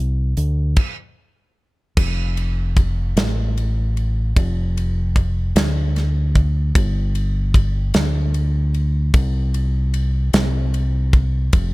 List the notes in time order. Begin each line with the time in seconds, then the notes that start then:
Already playing: C2
0.37 D2, closed hi-hat
0.76 kick, crash
1.97 F1, kick, crash
2.37 ride
2.77 kick, ride
3.16 A1, snare, ride
3.57 ride
3.97 ride
4.36 F1, kick, ride
4.77 ride
5.16 kick, ride
5.55 D2, snare, ride
5.96 snare, ride
6.35 kick, ride
6.75 G1, kick, ride
7.15 ride
7.54 kick, ride
7.94 D2, snare, ride
8.34 ride
8.74 ride
9.14 C2, kick, ride
9.54 ride
9.94 ride
10.33 C2, snare, ride
10.74 ride
11.13 kick, ride
11.53 F1, kick, ride